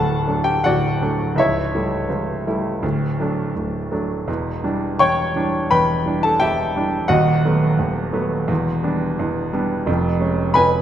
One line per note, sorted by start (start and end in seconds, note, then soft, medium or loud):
0.00 0.65 D1 medium
0.00 0.65 D2 medium
0.00 0.27 F#3 medium
0.00 0.28 A3 medium
0.00 0.28 D4 medium
0.00 0.41 A4 medium
0.00 1.40 B4 medium
0.00 0.64 F#5 medium
0.00 0.44 A5 medium
0.00 1.40 B5 loud
0.27 0.60 F#3 soft
0.27 0.60 A3 soft
0.27 0.61 D4 medium
0.44 0.62 G4 medium
0.44 0.63 G5 medium
0.64 1.01 D1 medium
0.64 1.01 D2 medium
0.64 1.34 F#4 medium
0.64 1.34 D5 medium
0.64 1.38 F#5 loud
1.02 1.34 F#3 medium
1.02 1.35 A3 soft
1.02 1.35 D4 medium
1.36 1.73 C#1 medium
1.36 1.71 C#2 medium
1.36 1.73 E4 medium
1.36 3.89 C#5 medium
1.36 3.92 E5 medium
1.75 2.07 G3 medium
1.75 2.07 A3 soft
1.75 2.07 E4 soft
2.09 2.45 C#1 medium
2.09 2.45 C#2 medium
2.47 2.80 G3 medium
2.47 2.80 A3 soft
2.47 2.80 E4 medium
2.83 3.19 D1 medium
2.83 3.18 D2 medium
3.20 3.52 F#3 soft
3.20 3.53 A3 medium
3.20 3.53 D4 medium
3.56 3.91 D1 medium
3.56 3.91 D2 medium
3.91 4.24 F#3 soft
3.91 4.24 A3 soft
3.91 4.25 D4 medium
4.27 4.62 E1 medium
4.27 4.62 E2 medium
4.64 4.96 E3 soft
4.64 4.96 G3 medium
4.64 4.96 D4 medium
4.99 5.34 E1 medium
4.99 5.35 E2 medium
4.99 5.67 C#5 medium
4.99 5.67 G5 medium
4.99 5.71 C#6 loud
5.36 5.68 E3 soft
5.36 5.68 G3 soft
5.36 5.68 D4 medium
5.71 6.05 E1 medium
5.71 6.05 E2 medium
5.71 6.20 B4 medium
5.71 6.20 G5 medium
5.71 6.24 B5 loud
6.06 6.37 E3 medium
6.06 6.37 G3 soft
6.06 6.38 D4 medium
6.23 6.40 A4 medium
6.23 6.41 A5 loud
6.40 6.74 E1 medium
6.40 6.74 E2 medium
6.40 7.06 G4 medium
6.40 7.06 E5 medium
6.40 7.09 G5 loud
6.76 7.07 E3 medium
6.76 7.07 G3 medium
6.76 7.08 D4 medium
7.08 7.43 D#1 medium
7.08 7.43 D#2 medium
7.08 9.50 F#4 medium
7.08 9.50 D#5 medium
7.08 9.53 F#5 loud
7.45 7.76 F#3 medium
7.45 7.76 A3 medium
7.45 7.77 B3 medium
7.79 8.13 D#1 medium
7.79 8.13 D#2 medium
8.13 8.45 F#3 medium
8.13 8.45 A3 medium
8.13 8.46 B3 medium
8.48 8.83 E1 medium
8.48 8.83 E2 medium
8.83 9.16 G3 medium
8.83 9.16 B3 medium
8.83 9.16 D4 medium
9.19 9.53 E1 medium
9.19 9.53 E2 medium
9.53 9.84 G3 medium
9.53 9.85 B3 medium
9.53 9.84 D4 medium
9.86 10.20 F1 medium
9.86 10.21 F2 medium
10.20 10.52 G#3 medium
10.20 10.52 C#4 medium
10.54 10.82 F1 medium
10.54 10.82 F2 medium
10.54 10.82 B4 medium
10.54 10.82 G#5 medium
10.54 10.82 B5 loud